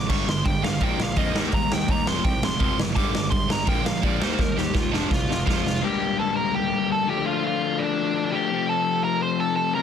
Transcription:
0.09 G1 G2 D3 G3 C#6, kick, open hi-hat, crash
0.28 G1 G2 D3 C6, snare
0.45 G1 G2 D3 G5, kick, open hi-hat
0.63 G1 G2 D3 F5, snare
0.80 A#1 A#2 D3 F3 A#3 G5, kick, open hi-hat
0.99 A#1 A#2 D3 F3 F5, snare
1.16 F2 A#2 D3 F3 A#3 D#5, kick, open hi-hat
1.34 D#2 D#3 G3 A#3 D#4, snare
1.52 D#2 D#3 G3 A#3 A#5, kick, open hi-hat
1.71 D#2 D#3 G3 A#3 G5, snare
1.88 D#2 D#3 G3 A#3 A#5, kick, open hi-hat
2.05 F1 F2 C3 F3 C6, snare
2.24 C2 F2 C3 G5, kick, open hi-hat
2.42 F1 F2 C3 C6, snare
2.60 F1 F2 C3 F3 C6, kick, open hi-hat
2.78 F#1 F2 C3, snare
2.96 G1 G2 D3 G3 D6, kick, open hi-hat
3.14 G1 G2 D3, snare
3.30 G1 G2 D3 C6, kick, open hi-hat
3.49 G1 G2 D3 A#5, snare
3.67 A#1 A#2 D3 F3 A#3 G5, kick, open hi-hat
3.83 A#1 A#2 D3 F3 F5, snare
4.03 A#1 A#2 D3 F3 A#3 D5, kick, open hi-hat
4.20 D#2 D#3 G3 D#4 C5, snare
4.24 A#3
4.39 D#2 D#3 G3 A#3 A#4, kick, snare
4.57 D#2 D#3 G3 A#3 G4, snare
4.74 D#2 D#3 G3 A#3 F4, kick, snare
4.92 F1 F2 C3 F3 D4, snare
5.11 C2 F2 C3 F4, kick, snare
5.27 F1 F2 C3, snare
5.46 F1 F2 C3 F3 F4 F5, kick, snare
5.65 F1 F2 C3, snare
5.82 G2 D3 G3 A#3 D4 G4 G5
6.19 A4 A5
6.36 A#4 A#5
6.55 G4 G5
6.92 A4 A5
7.07 D3 F3 A3 D4 G4 G5
7.26 F4 F5
7.46 F4 F5
7.79 D4 D5
8.32 D3 F3 A3 D4 G4 G5
8.51 F2 C3 F3 A3 C4
8.69 A4 A5
9.04 A#4 A#5
9.22 C5 C6
9.40 A4 A5
9.56 A4 A5
9.75 F2 C3 F3 A3 C4 A#4 A#5

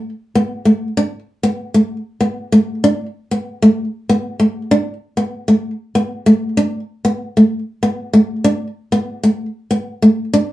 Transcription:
0.35 B3
0.65 A3
0.97 D4
1.43 B3
1.74 A3
2.21 B3
2.52 A3
2.84 D4
3.31 B3
3.62 A3
4.09 B3
4.40 A3
4.71 D4
5.17 B3
5.48 A3
5.95 B3
6.26 A3
6.57 D4
7.05 B3
7.37 A3
7.83 B3
8.13 A3
8.44 D4
8.92 B3
9.23 A3
9.71 B3
10.02 A3
10.34 D4

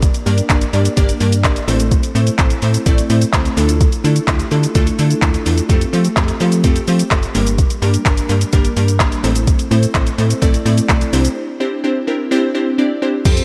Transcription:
Already playing: A#3 D4 G4 A#4 D5
0.02 kick, closed hi-hat, shaker
0.14 closed hi-hat, shaker
0.26 G2 A#3 D4 G4 A#4 D5, open hi-hat, shaker
0.38 closed hi-hat, shaker
0.50 G1 A#3 D4 G4 A#4 D5, kick, clap, closed hi-hat, shaker
0.61 closed hi-hat, shaker
0.73 G2 A#3 D4 G4 A#4 D5, open hi-hat, shaker
0.85 closed hi-hat, shaker
0.97 G1 A#3 D4 G4 A#4 D5, kick, closed hi-hat, shaker
1.09 closed hi-hat, shaker
1.20 G2 A#3 D4 G4 A#4 D5, open hi-hat, shaker
1.32 closed hi-hat, shaker
1.44 G#1 A#3 D4 G4 A#4 D5, kick, clap, closed hi-hat, shaker
1.56 closed hi-hat, shaker
1.68 A1 A3 C4 E4 A4 C5, open hi-hat, shaker
1.80 closed hi-hat, shaker
1.92 kick, closed hi-hat, shaker
2.03 closed hi-hat, shaker
2.15 A2 A3 C4 E4 A4 C5, open hi-hat, shaker
2.27 closed hi-hat, shaker
2.38 A1 A3 C4 E4 A4 C5, kick, clap, closed hi-hat, shaker
2.50 closed hi-hat, shaker
2.62 A2 A3 C4 E4 A4 C5, open hi-hat, shaker
2.74 closed hi-hat, shaker
2.86 A1 A3 C4 E4 A4 D5, kick, closed hi-hat, shaker
2.98 closed hi-hat, shaker
3.10 A2 A3 C4 E4 A4 C5, open hi-hat, shaker
3.22 closed hi-hat, shaker
3.33 C#2 A3 C4 E4 A4 C5, kick, clap, closed hi-hat, shaker
3.45 closed hi-hat, shaker
3.57 D2 A3 D4 E4 F4 A4, open hi-hat, shaker
3.69 closed hi-hat, shaker
3.81 kick, closed hi-hat, shaker
3.92 closed hi-hat, shaker
4.04 D3 A3 D4 E4 F4 A4, open hi-hat, shaker
4.16 closed hi-hat, shaker
4.28 D2 A3 D4 E4 F4 G4, kick, clap, closed hi-hat, shaker
4.39 closed hi-hat, shaker
4.51 D3 A3 D4 E4 F4 A4, open hi-hat, shaker
4.63 closed hi-hat, shaker
4.75 D2 A3 D4 E4 F4 A4, kick, closed hi-hat, shaker
4.87 closed hi-hat, shaker
4.99 D3 A3 D4 E4 F4 A4, open hi-hat, shaker
5.11 closed hi-hat, shaker
5.22 D#2 A3 D4 E4 F4 A4, kick, clap, closed hi-hat, shaker
5.34 closed hi-hat, shaker
5.46 E2 A3 D4 E4 F4 A4, open hi-hat, shaker
5.58 closed hi-hat, shaker
5.69 F2 A3 C4 F4 G4 A4, kick, closed hi-hat, shaker
5.81 closed hi-hat, shaker
5.93 F3 A3 C4 F4 G4 A4, open hi-hat, shaker
6.05 closed hi-hat, shaker
6.17 F2 A3 C4 F4 G4 A4, kick, clap, closed hi-hat, shaker
6.28 closed hi-hat, shaker
6.40 F3 A3 C4 F4 G4 A4, open hi-hat, shaker
6.52 closed hi-hat, shaker
6.64 F2 A3 C4 F4 G4 A4, kick, closed hi-hat, shaker
6.76 closed hi-hat, shaker
6.88 F3 A3 C4 F4 G4 C5, open hi-hat, shaker
6.99 closed hi-hat, shaker
7.11 F#1 A3 C4 F4 G4 A4, kick, clap, closed hi-hat, shaker
7.23 closed hi-hat, shaker
7.35 G1 G3 A#3 D4 G4 A#4, open hi-hat, shaker
7.47 closed hi-hat, shaker
7.58 kick, closed hi-hat, shaker
7.70 closed hi-hat, shaker
7.82 G2 G3 A#3 D4 G4 A#4, open hi-hat, shaker
7.94 closed hi-hat, shaker
8.05 G1 G3 A#3 D4 G4 A#4, kick, clap, closed hi-hat, shaker
8.17 closed hi-hat, shaker
8.29 G2 G3 A#3 D4 G4 A#4, open hi-hat, shaker
8.41 closed hi-hat, shaker
8.53 G1 G3 A#3 D4 G4 A#4, kick, closed hi-hat, shaker
8.65 closed hi-hat, shaker
8.77 G2 G3 A#3 D4 G4 A#4, open hi-hat, shaker
8.88 closed hi-hat, shaker
9.00 G#1 G3 A#3 D4 G4 A#4, kick, clap, closed hi-hat, shaker
9.12 closed hi-hat, shaker
9.24 A1 A3 C4 E4 A4 C5, open hi-hat, shaker
9.36 closed hi-hat, shaker
9.47 kick, closed hi-hat, shaker
9.59 closed hi-hat, shaker
9.71 A2 A3 C4 E4 A4 C5, open hi-hat, shaker
9.83 closed hi-hat, shaker
9.95 A1 A3 C4 E4 A4 C5, kick, clap, closed hi-hat, shaker
10.07 closed hi-hat, shaker
10.18 A2 A3 C4 E4 A4 C5, open hi-hat, shaker
10.30 closed hi-hat, shaker
10.42 A1 A3 C4 E4 A4 D5, kick, closed hi-hat, shaker
10.54 closed hi-hat, shaker
10.65 A2 A3 C4 E4 A4 D5, open hi-hat, shaker
10.78 closed hi-hat, shaker
10.89 B1 A3 C4 E4 A4 D5, kick, clap, closed hi-hat, shaker
11.01 closed hi-hat, shaker
11.13 C2 C4 D4 E4 G4 C5, open hi-hat, shaker
11.25 closed hi-hat, shaker
11.60 C4 D4 E4 G4 C5
11.84 C4 D4 E4 G4 C5
12.07 C4 D4 E4 G4 A#4
12.31 C4 D4 E4 G4 C5
12.54 C4 D4 E4 G4 C5
12.78 C4 D4 E4 G4 D5
13.02 C4 D4 E4 G4 C5
13.25 F2 C4 F4 G4 A4 C5, kick, closed hi-hat, crash, shaker
13.37 closed hi-hat, shaker

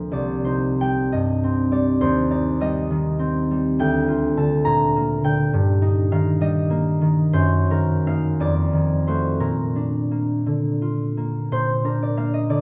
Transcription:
Already playing: D2 D3 F3 A#3 F4 A#4 D5 F5
0.11 C2 D5
0.45 D#4 C5
0.81 G3 G5
1.12 G2 D#5
1.44 C4
1.71 G3 D5
2.01 D#2 C5
2.30 D#4 D5
2.61 G3 D#5
2.90 D#3
3.19 C4
3.51 G3
3.79 D2 G5
4.08 F4
4.37 D3 A5
4.65 A#2 A#5
4.96 A#3
5.24 D3 G5
5.53 G2
5.82 D#4
6.12 D#3 F5
6.41 G3 D#5
6.70 A#3
7.01 D#3
7.33 F#2 C5
7.70 D#3 A#4
8.07 A#3 D#4 F5
8.40 F2 D5
8.73 D#3
9.07 A3 F#4 C5
9.40 A#2 A#4
9.76 D4
10.11 A#3
10.46 D3
10.82 F4
11.17 A#3
11.52 A#2 C5
11.84 D4 A#4
12.03 D5
12.17 A#3 F5
12.34 D#5
12.49 D3 D5

